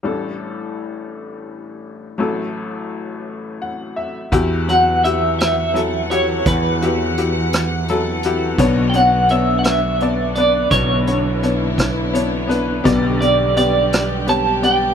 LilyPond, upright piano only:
<<
  \new Staff \with { instrumentName = "Upright piano" } { \time 6/8 \key e \dorian \tempo 4. = 56 << { r2. | r2 fis''8 e''8 | r2. | r2. |
r2. | r2. | r2. | } \\ { <g d' a'>2. | <fis e' a'>2. | <e' fis' g'>8 <fis e' fis'>8 <e' fis' g'>4 <fis e' a'>8 <e' fis' g'>8~ | <e' fis' g'>8 <e' fis' g'>8 <e' fis' g'>4 <fis e' a'>8 <e' fis' g'>8 |
<b d' cis''>8 <b d' cis''>8 <b d' cis''>4 <b d' d''>8 <b d' b'>8~ | <b d' b'>8 <b d' cis''>8 <b d' cis''>4 <b d' cis''>8 <b d' b'>8 | <b g' d''>8 <b g' d''>8 <b g' d''>4 <b g' cis''>8 <b g' d''>8 | } >> }
  \new Staff \with { instrumentName = "Upright piano" } { \clef bass \time 6/8 \key e \dorian <a,, a,>2. | <a,, a,>2. | e,2. | e,2. |
<b,, b,>2. | <b,, b,>2. | <b,, b,>2. | }
>>